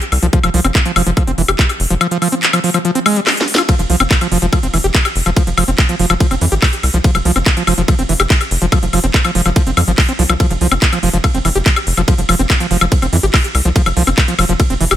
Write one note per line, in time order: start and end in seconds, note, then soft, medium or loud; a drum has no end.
0.02 closed hi-hat medium
0.12 0.19 C2 loud
0.12 open hi-hat loud
0.12 high woodblock soft
0.23 0.29 C2 medium
0.23 0.27 F3 medium
0.23 closed hi-hat medium
0.33 0.39 F3 loud
0.33 kick loud
0.33 closed hi-hat medium
0.43 0.50 F1 medium
0.43 0.50 F3 medium
0.43 closed hi-hat medium
0.43 high woodblock medium
0.54 0.61 C2 medium
0.54 0.60 F3 loud
0.54 open hi-hat loud
0.64 0.71 F1 medium
0.64 0.67 C4 medium
0.64 closed hi-hat medium
0.64 high woodblock soft
0.75 kick loud
0.75 clap loud
0.75 closed hi-hat medium
0.85 0.92 F3 medium
0.85 closed hi-hat medium
0.96 1.03 F1 medium
0.96 1.02 F3 loud
0.96 open hi-hat medium
0.96 high woodblock medium
1.06 1.13 F1 medium
1.06 1.11 F3 medium
1.06 closed hi-hat medium
1.17 1.23 F3 medium
1.17 kick loud
1.17 closed hi-hat medium
1.17 high woodblock soft
1.27 1.34 F1 medium
1.27 1.32 C4 medium
1.27 closed hi-hat medium
1.38 1.44 F1 loud
1.38 1.42 E3 loud
1.38 open hi-hat loud
1.48 1.55 F1 medium
1.48 1.51 G4 medium
1.48 closed hi-hat medium
1.48 high woodblock medium
1.59 kick loud
1.59 clap loud
1.59 closed hi-hat medium
1.69 closed hi-hat medium
1.69 high woodblock soft
1.80 1.86 F1 loud
1.80 open hi-hat loud
1.90 1.97 F1 medium
1.90 1.94 F3 medium
1.90 closed hi-hat medium
2.01 2.07 F3 loud
2.01 closed hi-hat medium
2.01 high woodblock medium
2.11 2.17 F3 medium
2.11 closed hi-hat medium
2.22 2.28 F3 loud
2.22 open hi-hat loud
2.22 high woodblock soft
2.32 2.35 C4 medium
2.32 closed hi-hat medium
2.43 clap loud
2.43 closed hi-hat medium
2.53 2.59 F3 medium
2.53 closed hi-hat medium
2.53 high woodblock medium
2.64 2.70 F3 loud
2.64 open hi-hat loud
2.74 2.78 F3 medium
2.74 closed hi-hat medium
2.74 high woodblock soft
2.85 2.91 F3 medium
2.85 closed hi-hat medium
2.95 2.99 C4 medium
2.95 closed hi-hat medium
3.06 3.18 G#3 medium
3.06 open hi-hat loud
3.06 high woodblock medium
3.16 3.20 G3 medium
3.16 closed hi-hat medium
3.27 snare medium
3.27 clap loud
3.27 open hi-hat medium
3.27 high woodblock soft
3.37 snare medium
3.37 closed hi-hat medium
3.48 open hi-hat loud
3.55 3.62 F4 medium
3.55 snare loud
3.55 closed hi-hat medium
3.55 high woodblock medium
3.69 3.75 F3 loud
3.69 kick loud
3.69 closed hi-hat medium
3.69 ride medium
3.69 high woodblock soft
3.79 3.86 F1 medium
3.79 3.82 F3 medium
3.79 closed hi-hat medium
3.90 3.96 C2 loud
3.90 3.96 F3 loud
3.90 open hi-hat loud
4.00 4.07 F1 medium
4.00 4.03 C4 medium
4.00 closed hi-hat medium
4.00 high woodblock medium
4.11 kick loud
4.11 clap loud
4.11 closed hi-hat medium
4.11 ride medium
4.21 4.27 F3 medium
4.21 closed hi-hat medium
4.21 high woodblock soft
4.32 4.38 F1 medium
4.32 4.38 F3 loud
4.32 open hi-hat loud
4.42 4.49 F1 medium
4.42 4.46 F3 medium
4.42 closed hi-hat medium
4.53 4.59 F3 medium
4.53 kick loud
4.53 closed hi-hat medium
4.53 ride medium
4.53 high woodblock medium
4.63 4.70 F1 medium
4.63 4.67 C4 medium
4.63 closed hi-hat medium
4.74 4.80 F1 medium
4.74 4.78 E3 loud
4.74 open hi-hat loud
4.74 high woodblock soft
4.84 4.91 F1 medium
4.84 4.87 G4 medium
4.84 closed hi-hat medium
4.95 kick loud
4.95 clap loud
4.95 closed hi-hat medium
4.95 ride medium
5.05 closed hi-hat medium
5.05 high woodblock medium
5.16 5.22 F1 loud
5.16 open hi-hat loud
5.26 5.33 F1 medium
5.26 5.30 F3 medium
5.26 closed hi-hat medium
5.26 high woodblock soft
5.37 5.43 F3 loud
5.37 kick loud
5.37 closed hi-hat medium
5.37 ride medium
5.47 5.54 F1 medium
5.47 5.49 F3 medium
5.47 closed hi-hat medium
5.57 5.64 F1 medium
5.57 5.64 F3 loud
5.57 open hi-hat loud
5.57 high woodblock medium
5.68 5.75 F1 medium
5.68 5.70 C4 medium
5.68 closed hi-hat medium
5.78 kick loud
5.78 clap loud
5.78 closed hi-hat medium
5.78 ride medium
5.78 high woodblock soft
5.89 5.95 F3 medium
5.89 closed hi-hat medium
5.99 6.06 F1 medium
5.99 6.06 F3 loud
5.99 open hi-hat loud
6.10 6.17 F1 medium
6.10 6.14 F3 medium
6.10 closed hi-hat medium
6.10 high woodblock medium
6.20 6.27 F3 medium
6.20 kick loud
6.20 closed hi-hat medium
6.20 ride medium
6.31 6.38 F1 medium
6.31 6.35 C4 medium
6.31 closed hi-hat medium
6.31 high woodblock soft
6.41 6.48 F2 loud
6.41 6.46 E3 loud
6.41 open hi-hat loud
6.52 6.58 G#1 medium
6.52 6.54 G4 medium
6.52 closed hi-hat medium
6.62 kick loud
6.62 clap loud
6.62 open hi-hat medium
6.62 ride medium
6.62 high woodblock medium
6.73 closed hi-hat medium
6.83 6.90 C2 loud
6.83 open hi-hat loud
6.83 high woodblock soft
6.94 7.00 C2 medium
6.94 6.98 F3 medium
6.94 closed hi-hat medium
7.04 7.10 F3 loud
7.04 kick loud
7.04 closed hi-hat medium
7.04 ride medium
7.15 7.21 F1 medium
7.15 7.17 F3 medium
7.15 closed hi-hat medium
7.15 high woodblock medium
7.25 7.32 C2 loud
7.25 7.31 F3 loud
7.25 open hi-hat loud
7.36 7.42 F1 medium
7.36 7.38 C4 medium
7.36 closed hi-hat medium
7.36 high woodblock soft
7.46 kick loud
7.46 clap loud
7.46 closed hi-hat medium
7.46 ride medium
7.57 7.63 F3 medium
7.57 closed hi-hat medium
7.67 7.74 F1 medium
7.67 7.73 F3 loud
7.67 open hi-hat loud
7.67 high woodblock medium
7.78 7.84 F1 medium
7.78 7.82 F3 medium
7.78 closed hi-hat medium
7.88 7.94 F3 medium
7.88 kick loud
7.88 closed hi-hat medium
7.88 ride medium
7.88 high woodblock soft
7.99 8.05 F1 medium
7.99 8.03 C4 medium
7.99 closed hi-hat medium
8.09 8.16 F1 loud
8.09 8.13 E3 loud
8.09 open hi-hat loud
8.20 8.26 F1 medium
8.20 8.22 G4 medium
8.20 closed hi-hat medium
8.20 high woodblock medium
8.30 kick loud
8.30 clap loud
8.30 closed hi-hat medium
8.30 ride medium
8.41 closed hi-hat medium
8.41 high woodblock soft
8.51 8.58 F1 loud
8.51 open hi-hat loud
8.62 8.68 F1 medium
8.62 8.66 F3 medium
8.62 closed hi-hat medium
8.72 8.78 F3 loud
8.72 kick loud
8.72 closed hi-hat medium
8.72 ride medium
8.72 high woodblock medium
8.83 8.89 F1 medium
8.83 8.85 F3 medium
8.83 closed hi-hat medium
8.93 9.00 F1 loud
8.93 8.99 F3 loud
8.93 open hi-hat loud
8.93 high woodblock soft
9.04 9.10 F1 medium
9.04 9.06 C4 medium
9.04 closed hi-hat medium
9.14 kick loud
9.14 clap loud
9.14 closed hi-hat medium
9.14 ride medium
9.25 9.31 F3 medium
9.25 closed hi-hat medium
9.25 high woodblock medium
9.35 9.42 F1 medium
9.35 9.41 F3 loud
9.35 open hi-hat loud
9.46 9.52 F1 medium
9.46 9.50 F3 medium
9.46 closed hi-hat medium
9.46 high woodblock soft
9.56 9.62 F3 medium
9.56 kick loud
9.56 closed hi-hat medium
9.56 ride medium
9.67 9.73 F1 medium
9.67 9.71 C4 medium
9.67 closed hi-hat medium
9.77 9.84 F2 loud
9.77 9.81 F3 medium
9.77 open hi-hat loud
9.77 high woodblock medium
9.88 9.94 G#1 medium
9.88 9.92 F3 medium
9.88 closed hi-hat medium
9.98 kick loud
9.98 clap loud
9.98 open hi-hat medium
9.98 ride medium
9.98 high woodblock soft
10.09 10.13 C4 medium
10.09 closed hi-hat medium
10.19 10.26 C2 loud
10.19 10.23 F3 loud
10.19 open hi-hat loud
10.29 10.36 C2 medium
10.29 10.34 F3 medium
10.29 closed hi-hat medium
10.29 high woodblock medium
10.40 10.46 F3 loud
10.40 kick loud
10.40 closed hi-hat medium
10.40 ride medium
10.40 high woodblock soft
10.51 10.57 F1 medium
10.51 10.53 F3 medium
10.51 closed hi-hat medium
10.61 10.68 C2 loud
10.61 10.67 F3 loud
10.61 open hi-hat loud
10.71 10.78 F1 medium
10.71 10.74 C4 medium
10.71 closed hi-hat medium
10.71 high woodblock medium
10.82 kick loud
10.82 clap loud
10.82 closed hi-hat medium
10.82 ride medium
10.92 10.99 F3 medium
10.92 closed hi-hat medium
10.92 high woodblock soft
11.03 11.10 F1 medium
11.03 11.09 F3 loud
11.03 open hi-hat loud
11.13 11.20 F1 medium
11.13 11.18 F3 medium
11.13 closed hi-hat medium
11.24 11.26 F3 loud
11.24 kick loud
11.24 closed hi-hat medium
11.24 ride medium
11.24 high woodblock medium
11.34 11.41 F1 medium
11.34 11.39 C4 medium
11.34 closed hi-hat medium
11.45 11.52 F1 loud
11.45 11.49 E3 loud
11.45 open hi-hat loud
11.45 high woodblock soft
11.55 11.62 F1 medium
11.55 11.58 G4 medium
11.55 closed hi-hat medium
11.66 kick loud
11.66 clap loud
11.66 closed hi-hat medium
11.66 ride medium
11.76 closed hi-hat medium
11.76 high woodblock medium
11.87 11.93 F1 medium
11.87 open hi-hat loud
11.97 12.04 F1 medium
11.97 12.01 F3 medium
11.97 closed hi-hat medium
11.97 high woodblock soft
12.08 12.14 F3 loud
12.08 kick loud
12.08 closed hi-hat medium
12.08 ride medium
12.18 12.25 F1 medium
12.18 12.21 F3 medium
12.18 closed hi-hat medium
12.29 12.35 F1 medium
12.29 12.35 F3 loud
12.29 open hi-hat loud
12.29 high woodblock medium
12.39 12.46 F1 medium
12.39 12.42 C4 medium
12.39 closed hi-hat medium
12.50 kick loud
12.50 clap loud
12.50 closed hi-hat medium
12.50 ride medium
12.50 high woodblock soft
12.60 12.66 F3 medium
12.60 closed hi-hat medium
12.71 12.77 F1 medium
12.71 12.77 F3 loud
12.71 open hi-hat medium
12.81 12.88 F1 medium
12.81 12.85 F3 medium
12.81 closed hi-hat medium
12.81 high woodblock medium
12.92 12.94 F3 loud
12.92 kick loud
12.92 closed hi-hat medium
12.92 ride medium
13.02 13.09 F1 medium
13.02 13.06 C4 medium
13.02 closed hi-hat medium
13.02 high woodblock soft
13.13 13.19 F2 loud
13.13 13.17 E3 loud
13.13 open hi-hat loud
13.23 13.30 G#1 medium
13.23 13.26 G4 medium
13.23 closed hi-hat medium
13.34 kick loud
13.34 clap loud
13.34 open hi-hat medium
13.34 ride medium
13.34 high woodblock medium
13.44 closed hi-hat medium
13.55 13.61 C2 medium
13.55 open hi-hat loud
13.55 high woodblock soft
13.65 13.72 C2 medium
13.65 13.69 F3 medium
13.65 closed hi-hat medium
13.76 13.82 F3 medium
13.76 kick loud
13.76 closed hi-hat medium
13.76 ride medium
13.86 13.93 F1 medium
13.86 13.89 F3 medium
13.86 closed hi-hat medium
13.86 high woodblock medium
13.97 14.03 C2 loud
13.97 14.03 F3 loud
13.97 open hi-hat loud
14.07 14.14 F1 medium
14.07 14.10 C4 medium
14.07 closed hi-hat medium
14.07 high woodblock soft
14.18 kick loud
14.18 clap loud
14.18 closed hi-hat medium
14.18 ride medium
14.28 14.34 F3 medium
14.28 closed hi-hat medium
14.39 14.45 F1 medium
14.39 14.45 F3 loud
14.39 open hi-hat loud
14.39 high woodblock medium
14.49 14.56 F1 medium
14.49 14.53 F3 medium
14.49 closed hi-hat medium
14.60 14.62 F3 loud
14.60 kick loud
14.60 closed hi-hat medium
14.60 ride medium
14.60 high woodblock soft
14.70 14.77 F1 medium
14.70 14.74 C4 medium
14.70 closed hi-hat medium
14.81 14.87 F1 loud
14.81 14.85 E3 loud
14.81 open hi-hat loud
14.91 14.97 F1 medium
14.91 14.94 G4 medium
14.91 closed hi-hat medium
14.91 high woodblock medium